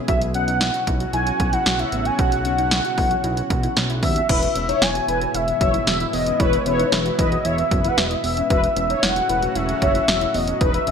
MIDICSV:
0, 0, Header, 1, 7, 480
1, 0, Start_track
1, 0, Key_signature, 4, "major"
1, 0, Tempo, 526316
1, 75, Time_signature, 4, 2, 24, 8
1, 9953, End_track
2, 0, Start_track
2, 0, Title_t, "Soft synth lead"
2, 0, Program_c, 0, 80
2, 75, Note_on_c, 0, 76, 97
2, 183, Note_off_c, 0, 76, 0
2, 315, Note_on_c, 0, 78, 112
2, 762, Note_off_c, 0, 78, 0
2, 1034, Note_on_c, 0, 80, 110
2, 1395, Note_on_c, 0, 78, 97
2, 1409, Note_off_c, 0, 80, 0
2, 1635, Note_on_c, 0, 76, 86
2, 1649, Note_off_c, 0, 78, 0
2, 1876, Note_on_c, 0, 80, 96
2, 1890, Note_off_c, 0, 76, 0
2, 1996, Note_on_c, 0, 78, 98
2, 2009, Note_off_c, 0, 80, 0
2, 3435, Note_off_c, 0, 78, 0
2, 3675, Note_on_c, 0, 76, 85
2, 3898, Note_off_c, 0, 76, 0
2, 3916, Note_on_c, 0, 76, 97
2, 4395, Note_on_c, 0, 80, 102
2, 4409, Note_off_c, 0, 76, 0
2, 4875, Note_on_c, 0, 76, 96
2, 4889, Note_off_c, 0, 80, 0
2, 5109, Note_off_c, 0, 76, 0
2, 5115, Note_on_c, 0, 76, 92
2, 5338, Note_off_c, 0, 76, 0
2, 5355, Note_on_c, 0, 76, 93
2, 5594, Note_on_c, 0, 75, 90
2, 5608, Note_off_c, 0, 76, 0
2, 5834, Note_on_c, 0, 73, 96
2, 5848, Note_off_c, 0, 75, 0
2, 6073, Note_on_c, 0, 71, 93
2, 6087, Note_off_c, 0, 73, 0
2, 6549, Note_off_c, 0, 71, 0
2, 6554, Note_on_c, 0, 75, 93
2, 6794, Note_on_c, 0, 76, 93
2, 6808, Note_off_c, 0, 75, 0
2, 7183, Note_on_c, 0, 78, 80
2, 7197, Note_off_c, 0, 76, 0
2, 7266, Note_on_c, 0, 76, 79
2, 7280, Note_off_c, 0, 78, 0
2, 7349, Note_on_c, 0, 75, 82
2, 7363, Note_off_c, 0, 76, 0
2, 7432, Note_on_c, 0, 76, 78
2, 7446, Note_off_c, 0, 75, 0
2, 7509, Note_off_c, 0, 76, 0
2, 7514, Note_on_c, 0, 76, 92
2, 7738, Note_off_c, 0, 76, 0
2, 7755, Note_on_c, 0, 76, 101
2, 8234, Note_on_c, 0, 78, 105
2, 8248, Note_off_c, 0, 76, 0
2, 8714, Note_on_c, 0, 76, 97
2, 8728, Note_off_c, 0, 78, 0
2, 8950, Note_off_c, 0, 76, 0
2, 8955, Note_on_c, 0, 76, 105
2, 9435, Note_on_c, 0, 75, 96
2, 9448, Note_off_c, 0, 76, 0
2, 9789, Note_off_c, 0, 75, 0
2, 9795, Note_on_c, 0, 76, 94
2, 9953, Note_off_c, 0, 76, 0
2, 9953, End_track
3, 0, Start_track
3, 0, Title_t, "Analog polysynth"
3, 0, Program_c, 1, 90
3, 3916, Note_on_c, 1, 71, 100
3, 4017, Note_off_c, 1, 71, 0
3, 4275, Note_on_c, 1, 73, 87
3, 4479, Note_off_c, 1, 73, 0
3, 4636, Note_on_c, 1, 71, 81
3, 4737, Note_off_c, 1, 71, 0
3, 5115, Note_on_c, 1, 73, 88
3, 5217, Note_off_c, 1, 73, 0
3, 5835, Note_on_c, 1, 71, 105
3, 6039, Note_off_c, 1, 71, 0
3, 6076, Note_on_c, 1, 73, 97
3, 6414, Note_off_c, 1, 73, 0
3, 6555, Note_on_c, 1, 71, 85
3, 6657, Note_off_c, 1, 71, 0
3, 6794, Note_on_c, 1, 73, 89
3, 6897, Note_off_c, 1, 73, 0
3, 7155, Note_on_c, 1, 71, 79
3, 7359, Note_off_c, 1, 71, 0
3, 7755, Note_on_c, 1, 71, 102
3, 7857, Note_off_c, 1, 71, 0
3, 8115, Note_on_c, 1, 73, 90
3, 8319, Note_off_c, 1, 73, 0
3, 8475, Note_on_c, 1, 71, 82
3, 8577, Note_off_c, 1, 71, 0
3, 8955, Note_on_c, 1, 73, 85
3, 9057, Note_off_c, 1, 73, 0
3, 9675, Note_on_c, 1, 71, 103
3, 9879, Note_off_c, 1, 71, 0
3, 9915, Note_on_c, 1, 75, 96
3, 9953, Note_off_c, 1, 75, 0
3, 9953, End_track
4, 0, Start_track
4, 0, Title_t, "Synth arpeggio sound"
4, 0, Program_c, 2, 84
4, 76, Note_on_c, 2, 66, 98
4, 255, Note_off_c, 2, 66, 0
4, 316, Note_on_c, 2, 61, 81
4, 405, Note_off_c, 2, 61, 0
4, 435, Note_on_c, 2, 63, 79
4, 525, Note_off_c, 2, 63, 0
4, 555, Note_on_c, 2, 64, 86
4, 645, Note_off_c, 2, 64, 0
4, 675, Note_on_c, 2, 66, 78
4, 765, Note_off_c, 2, 66, 0
4, 795, Note_on_c, 2, 64, 83
4, 885, Note_off_c, 2, 64, 0
4, 915, Note_on_c, 2, 66, 77
4, 1005, Note_off_c, 2, 66, 0
4, 1035, Note_on_c, 2, 64, 86
4, 1215, Note_off_c, 2, 64, 0
4, 1275, Note_on_c, 2, 66, 80
4, 1365, Note_off_c, 2, 66, 0
4, 1396, Note_on_c, 2, 64, 77
4, 1485, Note_off_c, 2, 64, 0
4, 1515, Note_on_c, 2, 66, 83
4, 1605, Note_off_c, 2, 66, 0
4, 1635, Note_on_c, 2, 64, 75
4, 1725, Note_off_c, 2, 64, 0
4, 1755, Note_on_c, 2, 59, 80
4, 1845, Note_off_c, 2, 59, 0
4, 1875, Note_on_c, 2, 61, 79
4, 1965, Note_off_c, 2, 61, 0
4, 1995, Note_on_c, 2, 66, 96
4, 2174, Note_off_c, 2, 66, 0
4, 2235, Note_on_c, 2, 61, 80
4, 2325, Note_off_c, 2, 61, 0
4, 2355, Note_on_c, 2, 63, 77
4, 2445, Note_off_c, 2, 63, 0
4, 2475, Note_on_c, 2, 64, 88
4, 2565, Note_off_c, 2, 64, 0
4, 2595, Note_on_c, 2, 66, 76
4, 2685, Note_off_c, 2, 66, 0
4, 2715, Note_on_c, 2, 64, 81
4, 2805, Note_off_c, 2, 64, 0
4, 2835, Note_on_c, 2, 66, 78
4, 2925, Note_off_c, 2, 66, 0
4, 2955, Note_on_c, 2, 64, 89
4, 3134, Note_off_c, 2, 64, 0
4, 3195, Note_on_c, 2, 66, 79
4, 3285, Note_off_c, 2, 66, 0
4, 3315, Note_on_c, 2, 64, 76
4, 3405, Note_off_c, 2, 64, 0
4, 3435, Note_on_c, 2, 66, 83
4, 3525, Note_off_c, 2, 66, 0
4, 3555, Note_on_c, 2, 64, 76
4, 3645, Note_off_c, 2, 64, 0
4, 3675, Note_on_c, 2, 59, 80
4, 3765, Note_off_c, 2, 59, 0
4, 3795, Note_on_c, 2, 61, 77
4, 3885, Note_off_c, 2, 61, 0
4, 3915, Note_on_c, 2, 64, 98
4, 4095, Note_off_c, 2, 64, 0
4, 4155, Note_on_c, 2, 61, 82
4, 4245, Note_off_c, 2, 61, 0
4, 4275, Note_on_c, 2, 63, 80
4, 4365, Note_off_c, 2, 63, 0
4, 4396, Note_on_c, 2, 64, 88
4, 4485, Note_off_c, 2, 64, 0
4, 4515, Note_on_c, 2, 66, 80
4, 4605, Note_off_c, 2, 66, 0
4, 4636, Note_on_c, 2, 64, 81
4, 4725, Note_off_c, 2, 64, 0
4, 4755, Note_on_c, 2, 66, 78
4, 4845, Note_off_c, 2, 66, 0
4, 4875, Note_on_c, 2, 64, 93
4, 5055, Note_off_c, 2, 64, 0
4, 5115, Note_on_c, 2, 66, 82
4, 5205, Note_off_c, 2, 66, 0
4, 5235, Note_on_c, 2, 64, 76
4, 5325, Note_off_c, 2, 64, 0
4, 5355, Note_on_c, 2, 66, 87
4, 5445, Note_off_c, 2, 66, 0
4, 5476, Note_on_c, 2, 64, 78
4, 5565, Note_off_c, 2, 64, 0
4, 5595, Note_on_c, 2, 59, 81
4, 5685, Note_off_c, 2, 59, 0
4, 5715, Note_on_c, 2, 61, 80
4, 5805, Note_off_c, 2, 61, 0
4, 5835, Note_on_c, 2, 64, 100
4, 6015, Note_off_c, 2, 64, 0
4, 6075, Note_on_c, 2, 61, 83
4, 6165, Note_off_c, 2, 61, 0
4, 6195, Note_on_c, 2, 63, 79
4, 6285, Note_off_c, 2, 63, 0
4, 6315, Note_on_c, 2, 64, 89
4, 6405, Note_off_c, 2, 64, 0
4, 6435, Note_on_c, 2, 66, 78
4, 6525, Note_off_c, 2, 66, 0
4, 6555, Note_on_c, 2, 64, 82
4, 6645, Note_off_c, 2, 64, 0
4, 6675, Note_on_c, 2, 66, 79
4, 6765, Note_off_c, 2, 66, 0
4, 6795, Note_on_c, 2, 64, 87
4, 6975, Note_off_c, 2, 64, 0
4, 7035, Note_on_c, 2, 66, 82
4, 7125, Note_off_c, 2, 66, 0
4, 7154, Note_on_c, 2, 64, 80
4, 7244, Note_off_c, 2, 64, 0
4, 7274, Note_on_c, 2, 66, 84
4, 7364, Note_off_c, 2, 66, 0
4, 7395, Note_on_c, 2, 64, 75
4, 7485, Note_off_c, 2, 64, 0
4, 7515, Note_on_c, 2, 59, 83
4, 7605, Note_off_c, 2, 59, 0
4, 7635, Note_on_c, 2, 61, 79
4, 7724, Note_off_c, 2, 61, 0
4, 7755, Note_on_c, 2, 66, 100
4, 7934, Note_off_c, 2, 66, 0
4, 7995, Note_on_c, 2, 61, 83
4, 8085, Note_off_c, 2, 61, 0
4, 8115, Note_on_c, 2, 63, 80
4, 8205, Note_off_c, 2, 63, 0
4, 8235, Note_on_c, 2, 64, 93
4, 8325, Note_off_c, 2, 64, 0
4, 8355, Note_on_c, 2, 66, 81
4, 8445, Note_off_c, 2, 66, 0
4, 8475, Note_on_c, 2, 64, 81
4, 8565, Note_off_c, 2, 64, 0
4, 8595, Note_on_c, 2, 66, 78
4, 8685, Note_off_c, 2, 66, 0
4, 8715, Note_on_c, 2, 64, 89
4, 8894, Note_off_c, 2, 64, 0
4, 8955, Note_on_c, 2, 66, 84
4, 9045, Note_off_c, 2, 66, 0
4, 9075, Note_on_c, 2, 64, 79
4, 9165, Note_off_c, 2, 64, 0
4, 9195, Note_on_c, 2, 66, 82
4, 9285, Note_off_c, 2, 66, 0
4, 9315, Note_on_c, 2, 64, 77
4, 9405, Note_off_c, 2, 64, 0
4, 9435, Note_on_c, 2, 59, 82
4, 9525, Note_off_c, 2, 59, 0
4, 9555, Note_on_c, 2, 61, 79
4, 9645, Note_off_c, 2, 61, 0
4, 9675, Note_on_c, 2, 63, 101
4, 9855, Note_off_c, 2, 63, 0
4, 9915, Note_on_c, 2, 61, 82
4, 9953, Note_off_c, 2, 61, 0
4, 9953, End_track
5, 0, Start_track
5, 0, Title_t, "Analog synth pad"
5, 0, Program_c, 3, 89
5, 0, Note_on_c, 3, 47, 83
5, 74, Note_on_c, 3, 61, 77
5, 74, Note_on_c, 3, 66, 91
5, 75, Note_on_c, 3, 49, 76
5, 75, Note_on_c, 3, 54, 78
5, 3878, Note_off_c, 3, 47, 0
5, 3878, Note_off_c, 3, 49, 0
5, 3878, Note_off_c, 3, 54, 0
5, 3878, Note_off_c, 3, 61, 0
5, 3878, Note_off_c, 3, 66, 0
5, 3914, Note_on_c, 3, 47, 75
5, 3914, Note_on_c, 3, 52, 76
5, 3914, Note_on_c, 3, 59, 79
5, 3915, Note_on_c, 3, 44, 82
5, 3915, Note_on_c, 3, 64, 93
5, 7718, Note_off_c, 3, 44, 0
5, 7718, Note_off_c, 3, 47, 0
5, 7718, Note_off_c, 3, 52, 0
5, 7718, Note_off_c, 3, 59, 0
5, 7718, Note_off_c, 3, 64, 0
5, 7754, Note_on_c, 3, 49, 77
5, 7755, Note_on_c, 3, 45, 84
5, 7755, Note_on_c, 3, 54, 80
5, 7755, Note_on_c, 3, 61, 76
5, 7755, Note_on_c, 3, 66, 94
5, 9655, Note_off_c, 3, 49, 0
5, 9656, Note_off_c, 3, 45, 0
5, 9656, Note_off_c, 3, 61, 0
5, 9656, Note_off_c, 3, 66, 0
5, 9675, Note_on_c, 3, 51, 75
5, 9675, Note_on_c, 3, 66, 94
5, 9676, Note_on_c, 3, 47, 87
5, 9676, Note_on_c, 3, 63, 80
5, 9953, Note_off_c, 3, 47, 0
5, 9953, Note_off_c, 3, 51, 0
5, 9953, Note_off_c, 3, 54, 0
5, 9953, Note_off_c, 3, 63, 0
5, 9953, Note_off_c, 3, 66, 0
5, 9953, End_track
6, 0, Start_track
6, 0, Title_t, "Analog synth bass"
6, 0, Program_c, 4, 38
6, 75, Note_on_c, 4, 35, 110
6, 645, Note_off_c, 4, 35, 0
6, 795, Note_on_c, 4, 35, 93
6, 963, Note_off_c, 4, 35, 0
6, 1035, Note_on_c, 4, 35, 103
6, 1203, Note_off_c, 4, 35, 0
6, 1275, Note_on_c, 4, 35, 96
6, 1443, Note_off_c, 4, 35, 0
6, 1515, Note_on_c, 4, 35, 103
6, 1683, Note_off_c, 4, 35, 0
6, 1755, Note_on_c, 4, 33, 89
6, 1923, Note_off_c, 4, 33, 0
6, 1995, Note_on_c, 4, 35, 106
6, 2565, Note_off_c, 4, 35, 0
6, 2715, Note_on_c, 4, 35, 92
6, 2883, Note_off_c, 4, 35, 0
6, 2955, Note_on_c, 4, 35, 102
6, 3123, Note_off_c, 4, 35, 0
6, 3195, Note_on_c, 4, 35, 101
6, 3363, Note_off_c, 4, 35, 0
6, 3435, Note_on_c, 4, 35, 107
6, 3673, Note_on_c, 4, 39, 94
6, 3686, Note_off_c, 4, 35, 0
6, 3842, Note_off_c, 4, 39, 0
6, 3916, Note_on_c, 4, 28, 121
6, 4083, Note_off_c, 4, 28, 0
6, 4155, Note_on_c, 4, 28, 95
6, 4323, Note_off_c, 4, 28, 0
6, 4395, Note_on_c, 4, 28, 100
6, 4563, Note_off_c, 4, 28, 0
6, 4635, Note_on_c, 4, 28, 106
6, 4803, Note_off_c, 4, 28, 0
6, 4875, Note_on_c, 4, 28, 105
6, 5043, Note_off_c, 4, 28, 0
6, 5115, Note_on_c, 4, 30, 94
6, 5283, Note_off_c, 4, 30, 0
6, 5355, Note_on_c, 4, 28, 108
6, 5523, Note_off_c, 4, 28, 0
6, 5595, Note_on_c, 4, 28, 100
6, 5763, Note_off_c, 4, 28, 0
6, 5835, Note_on_c, 4, 28, 115
6, 6003, Note_off_c, 4, 28, 0
6, 6076, Note_on_c, 4, 28, 100
6, 6243, Note_off_c, 4, 28, 0
6, 6315, Note_on_c, 4, 28, 105
6, 6483, Note_off_c, 4, 28, 0
6, 6555, Note_on_c, 4, 28, 104
6, 6723, Note_off_c, 4, 28, 0
6, 6795, Note_on_c, 4, 28, 100
6, 6963, Note_off_c, 4, 28, 0
6, 7035, Note_on_c, 4, 30, 97
6, 7203, Note_off_c, 4, 30, 0
6, 7275, Note_on_c, 4, 28, 104
6, 7443, Note_off_c, 4, 28, 0
6, 7514, Note_on_c, 4, 28, 95
6, 7683, Note_off_c, 4, 28, 0
6, 7755, Note_on_c, 4, 28, 110
6, 7923, Note_off_c, 4, 28, 0
6, 7994, Note_on_c, 4, 28, 108
6, 8162, Note_off_c, 4, 28, 0
6, 8235, Note_on_c, 4, 28, 100
6, 8403, Note_off_c, 4, 28, 0
6, 8475, Note_on_c, 4, 28, 102
6, 8643, Note_off_c, 4, 28, 0
6, 8715, Note_on_c, 4, 28, 105
6, 8883, Note_off_c, 4, 28, 0
6, 8955, Note_on_c, 4, 30, 96
6, 9123, Note_off_c, 4, 30, 0
6, 9195, Note_on_c, 4, 28, 101
6, 9363, Note_off_c, 4, 28, 0
6, 9435, Note_on_c, 4, 28, 100
6, 9603, Note_off_c, 4, 28, 0
6, 9675, Note_on_c, 4, 28, 107
6, 9843, Note_off_c, 4, 28, 0
6, 9915, Note_on_c, 4, 28, 107
6, 9953, Note_off_c, 4, 28, 0
6, 9953, End_track
7, 0, Start_track
7, 0, Title_t, "Drums"
7, 75, Note_on_c, 9, 36, 111
7, 75, Note_on_c, 9, 42, 71
7, 166, Note_off_c, 9, 42, 0
7, 167, Note_off_c, 9, 36, 0
7, 196, Note_on_c, 9, 42, 52
7, 287, Note_off_c, 9, 42, 0
7, 314, Note_on_c, 9, 42, 74
7, 405, Note_off_c, 9, 42, 0
7, 437, Note_on_c, 9, 42, 53
7, 528, Note_off_c, 9, 42, 0
7, 553, Note_on_c, 9, 42, 72
7, 554, Note_on_c, 9, 38, 111
7, 645, Note_off_c, 9, 38, 0
7, 645, Note_off_c, 9, 42, 0
7, 676, Note_on_c, 9, 42, 56
7, 767, Note_off_c, 9, 42, 0
7, 795, Note_on_c, 9, 36, 97
7, 797, Note_on_c, 9, 42, 77
7, 886, Note_off_c, 9, 36, 0
7, 888, Note_off_c, 9, 42, 0
7, 915, Note_on_c, 9, 42, 45
7, 1007, Note_off_c, 9, 42, 0
7, 1034, Note_on_c, 9, 42, 71
7, 1125, Note_off_c, 9, 42, 0
7, 1155, Note_on_c, 9, 42, 52
7, 1246, Note_off_c, 9, 42, 0
7, 1275, Note_on_c, 9, 36, 90
7, 1275, Note_on_c, 9, 42, 72
7, 1366, Note_off_c, 9, 36, 0
7, 1367, Note_off_c, 9, 42, 0
7, 1395, Note_on_c, 9, 42, 48
7, 1486, Note_off_c, 9, 42, 0
7, 1514, Note_on_c, 9, 42, 67
7, 1516, Note_on_c, 9, 38, 121
7, 1605, Note_off_c, 9, 42, 0
7, 1607, Note_off_c, 9, 38, 0
7, 1635, Note_on_c, 9, 42, 52
7, 1726, Note_off_c, 9, 42, 0
7, 1754, Note_on_c, 9, 42, 66
7, 1845, Note_off_c, 9, 42, 0
7, 1873, Note_on_c, 9, 42, 52
7, 1964, Note_off_c, 9, 42, 0
7, 1995, Note_on_c, 9, 36, 112
7, 1995, Note_on_c, 9, 42, 75
7, 2086, Note_off_c, 9, 42, 0
7, 2087, Note_off_c, 9, 36, 0
7, 2116, Note_on_c, 9, 42, 52
7, 2208, Note_off_c, 9, 42, 0
7, 2234, Note_on_c, 9, 42, 75
7, 2325, Note_off_c, 9, 42, 0
7, 2357, Note_on_c, 9, 42, 52
7, 2448, Note_off_c, 9, 42, 0
7, 2474, Note_on_c, 9, 38, 116
7, 2474, Note_on_c, 9, 42, 69
7, 2565, Note_off_c, 9, 42, 0
7, 2566, Note_off_c, 9, 38, 0
7, 2597, Note_on_c, 9, 42, 54
7, 2688, Note_off_c, 9, 42, 0
7, 2715, Note_on_c, 9, 36, 101
7, 2717, Note_on_c, 9, 46, 58
7, 2806, Note_off_c, 9, 36, 0
7, 2808, Note_off_c, 9, 46, 0
7, 2836, Note_on_c, 9, 42, 45
7, 2927, Note_off_c, 9, 42, 0
7, 2954, Note_on_c, 9, 42, 73
7, 3045, Note_off_c, 9, 42, 0
7, 3076, Note_on_c, 9, 42, 52
7, 3167, Note_off_c, 9, 42, 0
7, 3195, Note_on_c, 9, 36, 95
7, 3195, Note_on_c, 9, 42, 72
7, 3286, Note_off_c, 9, 36, 0
7, 3287, Note_off_c, 9, 42, 0
7, 3315, Note_on_c, 9, 42, 50
7, 3406, Note_off_c, 9, 42, 0
7, 3434, Note_on_c, 9, 42, 66
7, 3436, Note_on_c, 9, 38, 119
7, 3526, Note_off_c, 9, 42, 0
7, 3527, Note_off_c, 9, 38, 0
7, 3555, Note_on_c, 9, 42, 54
7, 3646, Note_off_c, 9, 42, 0
7, 3673, Note_on_c, 9, 36, 101
7, 3674, Note_on_c, 9, 46, 71
7, 3764, Note_off_c, 9, 36, 0
7, 3766, Note_off_c, 9, 46, 0
7, 3794, Note_on_c, 9, 42, 56
7, 3885, Note_off_c, 9, 42, 0
7, 3916, Note_on_c, 9, 36, 114
7, 3916, Note_on_c, 9, 42, 73
7, 3916, Note_on_c, 9, 49, 96
7, 4007, Note_off_c, 9, 36, 0
7, 4007, Note_off_c, 9, 42, 0
7, 4007, Note_off_c, 9, 49, 0
7, 4037, Note_on_c, 9, 42, 56
7, 4128, Note_off_c, 9, 42, 0
7, 4154, Note_on_c, 9, 42, 75
7, 4245, Note_off_c, 9, 42, 0
7, 4278, Note_on_c, 9, 42, 54
7, 4369, Note_off_c, 9, 42, 0
7, 4394, Note_on_c, 9, 42, 74
7, 4395, Note_on_c, 9, 38, 118
7, 4485, Note_off_c, 9, 42, 0
7, 4486, Note_off_c, 9, 38, 0
7, 4516, Note_on_c, 9, 42, 56
7, 4608, Note_off_c, 9, 42, 0
7, 4637, Note_on_c, 9, 42, 80
7, 4728, Note_off_c, 9, 42, 0
7, 4756, Note_on_c, 9, 42, 48
7, 4847, Note_off_c, 9, 42, 0
7, 4875, Note_on_c, 9, 42, 77
7, 4966, Note_off_c, 9, 42, 0
7, 4996, Note_on_c, 9, 42, 53
7, 5087, Note_off_c, 9, 42, 0
7, 5115, Note_on_c, 9, 36, 92
7, 5116, Note_on_c, 9, 42, 73
7, 5206, Note_off_c, 9, 36, 0
7, 5208, Note_off_c, 9, 42, 0
7, 5235, Note_on_c, 9, 42, 50
7, 5326, Note_off_c, 9, 42, 0
7, 5354, Note_on_c, 9, 42, 66
7, 5356, Note_on_c, 9, 38, 121
7, 5446, Note_off_c, 9, 42, 0
7, 5447, Note_off_c, 9, 38, 0
7, 5475, Note_on_c, 9, 42, 56
7, 5566, Note_off_c, 9, 42, 0
7, 5594, Note_on_c, 9, 46, 72
7, 5685, Note_off_c, 9, 46, 0
7, 5713, Note_on_c, 9, 42, 56
7, 5805, Note_off_c, 9, 42, 0
7, 5835, Note_on_c, 9, 36, 120
7, 5835, Note_on_c, 9, 42, 73
7, 5927, Note_off_c, 9, 36, 0
7, 5927, Note_off_c, 9, 42, 0
7, 5956, Note_on_c, 9, 42, 56
7, 6048, Note_off_c, 9, 42, 0
7, 6074, Note_on_c, 9, 42, 77
7, 6165, Note_off_c, 9, 42, 0
7, 6197, Note_on_c, 9, 42, 55
7, 6289, Note_off_c, 9, 42, 0
7, 6313, Note_on_c, 9, 42, 73
7, 6314, Note_on_c, 9, 38, 117
7, 6404, Note_off_c, 9, 42, 0
7, 6405, Note_off_c, 9, 38, 0
7, 6436, Note_on_c, 9, 42, 58
7, 6527, Note_off_c, 9, 42, 0
7, 6555, Note_on_c, 9, 36, 101
7, 6557, Note_on_c, 9, 42, 80
7, 6646, Note_off_c, 9, 36, 0
7, 6648, Note_off_c, 9, 42, 0
7, 6675, Note_on_c, 9, 42, 47
7, 6767, Note_off_c, 9, 42, 0
7, 6794, Note_on_c, 9, 42, 76
7, 6885, Note_off_c, 9, 42, 0
7, 6916, Note_on_c, 9, 42, 52
7, 7007, Note_off_c, 9, 42, 0
7, 7035, Note_on_c, 9, 36, 94
7, 7036, Note_on_c, 9, 42, 72
7, 7126, Note_off_c, 9, 36, 0
7, 7127, Note_off_c, 9, 42, 0
7, 7154, Note_on_c, 9, 42, 51
7, 7246, Note_off_c, 9, 42, 0
7, 7274, Note_on_c, 9, 42, 66
7, 7276, Note_on_c, 9, 38, 126
7, 7365, Note_off_c, 9, 42, 0
7, 7367, Note_off_c, 9, 38, 0
7, 7395, Note_on_c, 9, 42, 56
7, 7486, Note_off_c, 9, 42, 0
7, 7514, Note_on_c, 9, 46, 68
7, 7605, Note_off_c, 9, 46, 0
7, 7633, Note_on_c, 9, 42, 54
7, 7725, Note_off_c, 9, 42, 0
7, 7755, Note_on_c, 9, 36, 116
7, 7755, Note_on_c, 9, 42, 75
7, 7846, Note_off_c, 9, 36, 0
7, 7846, Note_off_c, 9, 42, 0
7, 7876, Note_on_c, 9, 42, 54
7, 7967, Note_off_c, 9, 42, 0
7, 7993, Note_on_c, 9, 42, 74
7, 8085, Note_off_c, 9, 42, 0
7, 8117, Note_on_c, 9, 42, 55
7, 8208, Note_off_c, 9, 42, 0
7, 8233, Note_on_c, 9, 42, 74
7, 8234, Note_on_c, 9, 38, 123
7, 8325, Note_off_c, 9, 38, 0
7, 8325, Note_off_c, 9, 42, 0
7, 8356, Note_on_c, 9, 42, 55
7, 8447, Note_off_c, 9, 42, 0
7, 8476, Note_on_c, 9, 42, 84
7, 8568, Note_off_c, 9, 42, 0
7, 8595, Note_on_c, 9, 42, 46
7, 8687, Note_off_c, 9, 42, 0
7, 8714, Note_on_c, 9, 42, 74
7, 8805, Note_off_c, 9, 42, 0
7, 8835, Note_on_c, 9, 42, 51
7, 8927, Note_off_c, 9, 42, 0
7, 8955, Note_on_c, 9, 36, 95
7, 8955, Note_on_c, 9, 42, 77
7, 9046, Note_off_c, 9, 36, 0
7, 9046, Note_off_c, 9, 42, 0
7, 9074, Note_on_c, 9, 42, 50
7, 9165, Note_off_c, 9, 42, 0
7, 9194, Note_on_c, 9, 42, 66
7, 9195, Note_on_c, 9, 38, 121
7, 9285, Note_off_c, 9, 42, 0
7, 9287, Note_off_c, 9, 38, 0
7, 9315, Note_on_c, 9, 42, 54
7, 9406, Note_off_c, 9, 42, 0
7, 9434, Note_on_c, 9, 46, 70
7, 9525, Note_off_c, 9, 46, 0
7, 9553, Note_on_c, 9, 42, 55
7, 9644, Note_off_c, 9, 42, 0
7, 9675, Note_on_c, 9, 36, 115
7, 9675, Note_on_c, 9, 42, 76
7, 9766, Note_off_c, 9, 42, 0
7, 9767, Note_off_c, 9, 36, 0
7, 9796, Note_on_c, 9, 42, 54
7, 9888, Note_off_c, 9, 42, 0
7, 9914, Note_on_c, 9, 42, 78
7, 9953, Note_off_c, 9, 42, 0
7, 9953, End_track
0, 0, End_of_file